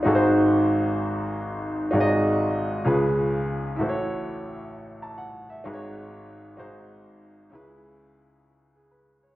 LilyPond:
\new Staff \with { instrumentName = "Upright piano" } { \time 6/8 \key gis \phrygian \tempo 4. = 64 << { r2. | r2. | r2 a''16 fis''8 e''16~ | e''16 r2 r8. |
r2 gis'16 b'8 cis''16 | } \\ { <gis,, gis, dis' fis' gis' a' bis'>2. | <gis,, gis, dis' fis' gis' d'' dis''>4. <cis, cis cis' eis' gis' b'>4. | <a,, a, e' fis' a' bis' cis''>2. | <gis,, gis, dis' fis' gis' b' cis''>4. <gis,, gis, dis' fis' gis' bis'>4. |
<cis, cis cis' e' gis' b'>2. | } >> }